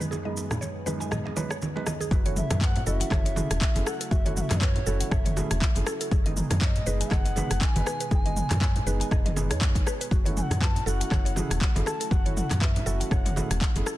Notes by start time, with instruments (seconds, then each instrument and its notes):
Already playing: felt piano F#2 G#3 B3 D#4 G#4, analog synth pad F#2 D#3 G#3 B3 G#4 B4
0.00 synth pluck B4, high conga, shaker
0.11 synth pluck G#4, muted conga, shaker
0.25 felt piano F#2 G#3 B3 D#4 G#4, synth pluck D#5
0.37 muted conga, shaker
0.51 cross-stick, low conga, shaker
0.61 synth pluck C#5, muted conga, shaker
0.86 felt piano F#2 G#3 B3 D#4 G#4, synth pluck B4, high conga, shaker
1.00 synth pluck G#5, muted conga, shaker
1.11 synth pluck D#5, cross-stick, high conga, low conga, shaker
1.25 synth pluck D#5, muted conga
1.36 felt piano F#2 G#3 B3 D#4 B4, synth pluck C#5, high conga, shaker
1.50 synth pluck C#5, cross-stick, muted conga, shaker
1.62 high conga, shaker
1.76 felt piano F#2 G#3 B3 D#4 B4, muted conga
1.87 synth pluck D#5, cross-stick, high conga, shaker
2.01 synth pluck G#4, high conga, shaker
2.11 fm bass F#1, analog synth pad C#3 F#3 A3 E4 F#4, synth pluck F#4, kick, muted conga, shaker
2.26 felt piano A3 C#4 E4 F#4, synth pluck C#5, closed hi-hat, high conga
2.36 bansuri E5, mid tom, muted conga, shaker
2.50 fm bass F#2, cross-stick, closed hi-hat, high conga, low conga, shaker
2.61 synth pluck B4, bansuri G#5, kick, clap, shaker
2.65 bansuri F#5
2.76 closed hi-hat, low conga
2.86 fm bass F#1, felt piano A3 C#4 E4 F#4, synth pluck A4, bansuri D#5, shaker
2.99 bansuri E5, synth pluck F#5, closed hi-hat, muted conga, shaker
3.11 fm bass F#1, synth pluck C#5, kick, cross-stick, clap, high conga, shaker
3.25 synth pluck C#5, closed hi-hat, muted conga
3.36 felt piano A3 C#4 E4 G#4, synth pluck F#4, mid tom, high conga, shaker
3.50 fm bass E1, cross-stick, closed hi-hat, muted conga, shaker
3.61 kick, clap, shaker
3.75 fm bass F#1, felt piano A3 C#4 E4 G#4, closed hi-hat, muted conga, high conga
3.86 synth pluck A4, bansuri F#5, cross-stick, shaker
4.01 synth pluck A4, closed hi-hat, shaker
4.11 fm bass F#1, synth pluck F#4, bansuri E5, kick, muted conga, shaker
4.26 felt piano A3 C#4 E4 F#4, synth pluck C#5, closed hi-hat, high conga
4.36 bansuri F#5, mid tom, muted conga, shaker
4.41 bansuri E5
4.51 fm bass F#2, cross-stick, clap, closed hi-hat, high conga, low conga, shaker
4.60 synth pluck B4, bansuri C#5, kick, clap, muted conga, shaker
4.76 closed hi-hat, low conga
4.87 fm bass F#1, felt piano A3 C#4 E4 F#4, synth pluck A4, shaker
5.01 synth pluck F#5, closed hi-hat, muted conga, shaker
5.10 fm bass F#1, synth pluck C#5, bansuri E5, kick, cross-stick, low conga, shaker
5.25 synth pluck C#5, closed hi-hat, mid tom, muted conga, high conga
5.37 felt piano A3 C#4 E4 G#4, synth pluck F#4, high conga, shaker
5.51 fm bass E1, cross-stick, closed hi-hat, muted conga, shaker
5.61 kick, clap, shaker
5.75 fm bass F#1, felt piano A3 C#4 E4 G#4, closed hi-hat, muted conga
5.86 synth pluck A4, cross-stick, shaker
6.01 synth pluck A4, closed hi-hat, shaker
6.11 fm bass F#1, analog synth pad B2 D#3 G#3 D#4 G#4, synth pluck G#4, kick, muted conga, shaker
6.26 felt piano G#3 B3 D#4 G#4, synth pluck D#5, closed hi-hat, high conga
6.37 mid tom, muted conga, shaker
6.50 fm bass F#2, cross-stick, closed hi-hat, high conga, low conga, shaker
6.61 synth pluck C#5, bansuri E5, kick, clap, muted conga, shaker
6.66 bansuri D#5
6.76 closed hi-hat, low conga
6.86 fm bass F#1, felt piano G#3 B3 D#4 G#4, synth pluck B4, shaker
7.01 synth pluck G#5, closed hi-hat, muted conga, shaker
7.11 fm bass F#1, synth pluck D#5, bansuri F#5, kick, cross-stick, clap, high conga, shaker
7.25 synth pluck D#5, closed hi-hat, muted conga
7.36 felt piano G#3 B3 D#4 B4, synth pluck G#4, mid tom, high conga, shaker
7.50 fm bass F#1, cross-stick, closed hi-hat, muted conga, shaker
7.61 bansuri G#5, kick, clap, shaker
7.76 fm bass F#1, felt piano G#3 B3 D#4 B4, closed hi-hat, muted conga, high conga
7.86 synth pluck B4, cross-stick, shaker
8.00 synth pluck B4, closed hi-hat, shaker
8.11 fm bass F#1, synth pluck G#4, bansuri G#5, kick, muted conga, shaker
8.26 felt piano G#3 B3 D#4 G#4, synth pluck D#5, closed hi-hat, high conga
8.37 mid tom, muted conga, shaker
8.51 fm bass F#2, cross-stick, clap, closed hi-hat, high conga, low conga, shaker
8.61 synth pluck C#5, kick, clap, muted conga, shaker
8.76 closed hi-hat, low conga
8.86 fm bass F#1, felt piano G#3 B3 D#4 G#4, synth pluck B4, shaker
9.00 synth pluck G#5, closed hi-hat, muted conga, shaker
9.11 fm bass F#1, synth pluck D#5, kick, cross-stick, low conga, shaker
9.26 synth pluck D#5, closed hi-hat, mid tom, muted conga, high conga
9.36 felt piano G#3 B3 D#4 G#4, synth pluck G#4, high conga, shaker
9.50 fm bass F#2, felt piano G#3 B3 D#4 C#5, cross-stick, closed hi-hat, muted conga, shaker
9.61 kick, clap, shaker
9.75 fm bass F#1, kick, closed hi-hat, muted conga
9.86 synth pluck B4, cross-stick, shaker
10.01 synth pluck B4, closed hi-hat, shaker
10.11 fm bass F#1, analog synth pad C#3 F#3 A3 E4 F#4, synth pluck F#4, kick, muted conga, shaker
10.25 felt piano A3 C#4 E4 F#4, synth pluck C#5, closed hi-hat, high conga
10.37 bansuri G#5, mid tom, muted conga, shaker
10.42 bansuri F#5
10.51 fm bass F#2, cross-stick, closed hi-hat, high conga, low conga, shaker
10.61 synth pluck B4, bansuri A5, kick, clap, muted conga, shaker
10.76 closed hi-hat, low conga
10.86 fm bass F#1, felt piano A3 C#4 E4 F#4, synth pluck A4, bansuri F#5, shaker
11.00 synth pluck F#5, closed hi-hat, muted conga, shaker
11.11 fm bass F#1, synth pluck C#5, kick, cross-stick, clap, high conga, shaker
11.25 synth pluck C#5, closed hi-hat, muted conga
11.36 felt piano A3 C#4 E4 G#4, synth pluck F#4, mid tom, high conga, shaker
11.50 fm bass E1, cross-stick, closed hi-hat, muted conga, shaker
11.61 kick, clap, shaker
11.75 fm bass F#1, felt piano A3 C#4 E4 G#4, closed hi-hat, muted conga, high conga
11.86 synth pluck A4, bansuri A5, cross-stick, shaker
12.00 synth pluck A4, closed hi-hat, shaker
12.11 fm bass F#1, synth pluck F#4, bansuri F#5, kick, muted conga, shaker
12.26 felt piano A3 C#4 E4 F#4, synth pluck C#5, closed hi-hat, high conga
12.37 bansuri F#5, mid tom, muted conga, shaker
12.50 fm bass F#2, cross-stick, clap, closed hi-hat, high conga, low conga, shaker
12.61 synth pluck B4, bansuri E5, kick, clap, shaker
12.76 closed hi-hat, low conga
12.86 fm bass F#1, felt piano A3 C#4 E4 F#4, synth pluck A4, shaker
13.00 synth pluck F#5, closed hi-hat, muted conga, shaker
13.11 fm bass F#1, synth pluck C#5, bansuri F#5, kick, cross-stick, low conga, shaker
13.25 synth pluck C#5, closed hi-hat, mid tom, muted conga, high conga
13.36 felt piano A3 C#4 E4 G#4, synth pluck F#4, high conga, shaker
13.50 fm bass E1, cross-stick, closed hi-hat, muted conga, shaker
13.61 kick, clap, shaker
13.76 fm bass F#1, felt piano A3 C#4 E4 G#4, closed hi-hat, muted conga
13.86 synth pluck A4, cross-stick, shaker